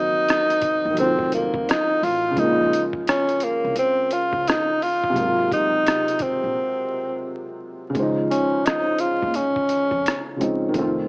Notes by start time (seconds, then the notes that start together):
Already playing: D#3 F#3 A#3 C4 D#4 F#4
0.29 cross-stick, closed hi-hat
0.50 closed hi-hat
0.62 kick, closed hi-hat
0.85 D#2
0.90 D#3 F#3
0.97 F1 C4 A4, closed hi-hat
1.03 F4
1.19 kick
1.32 A#3, closed hi-hat
1.54 F1, kick
1.69 D#4, cross-stick, closed hi-hat
2.03 A1 F4, open hi-hat
2.31 C#3 F3
2.37 A#1 G#3 A#3 D#4, kick, closed hi-hat
2.44 F4
2.73 closed hi-hat
2.93 kick
3.07 C#4, cross-stick, closed hi-hat
3.29 closed hi-hat
3.40 A#3, closed hi-hat
3.64 C2
3.76 C4, closed hi-hat
4.11 F4, closed hi-hat
4.33 C#2, kick
4.47 D#4, cross-stick, closed hi-hat
4.82 F4, open hi-hat
5.04 kick
5.10 C3 F#3
5.16 G#1 G#3 A#3, kick, closed hi-hat
5.22 F4
5.51 D#4, kick, closed hi-hat
5.86 cross-stick, closed hi-hat
6.08 closed hi-hat
6.19 C4, kick, closed hi-hat
6.44 A#1
7.90 C#3 D#3
7.95 C#2 G#3, kick, closed hi-hat
7.99 F3 D#4 C5
8.31 C#4, closed hi-hat
8.65 D#4, cross-stick, closed hi-hat
8.98 F4, closed hi-hat
9.23 D#2, kick
9.34 C#4, closed hi-hat
9.56 kick
9.69 closed hi-hat
9.91 F2, kick
10.06 cross-stick, closed hi-hat
10.36 C#3 F3 G#3
10.41 C4 D#4, closed hi-hat
10.69 D#3 F3
10.74 F1 A3, kick, closed hi-hat
10.79 C4 F4